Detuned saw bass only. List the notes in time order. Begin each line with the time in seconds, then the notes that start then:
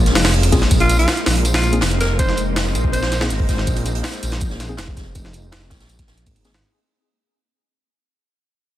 Already playing: A#1
0.15 F1
0.52 A#1
0.71 A#1
1.27 A#1
1.82 F1
2.75 A#1
3.30 G#1
3.49 G#1
3.67 A#1
4.23 A#1
4.78 F1
5.71 A#1
6.27 G#1